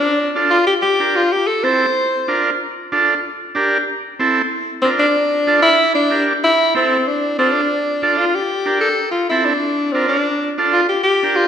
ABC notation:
X:1
M:4/4
L:1/8
Q:1/4=188
K:Dm
V:1 name="Alto saxophone"
D2 z F G G2 F | G A c4- c z | z8 | z6 C D- |
D3 E2 D2 z | E2 C2 D2 C D- | D3 F G3 A- | A F E D3 C D- |
D2 z F G G2 F |]
V:2 name="Transistor combo organ"
z2 [DFA] z3 [DGB] z | z2 [CEA] z3 [DFB] z | z2 [DFA] z3 [DGB] z | z2 [CEA] z3 [DFB] z |
z2 [DFA] z3 [DGB] z | z2 [CEA] z3 [DFA] z | z2 [DFA] z3 [DGB] z | z2 [CEA] z3 [DFB] z |
z2 [DFA] z3 [DGB] z |]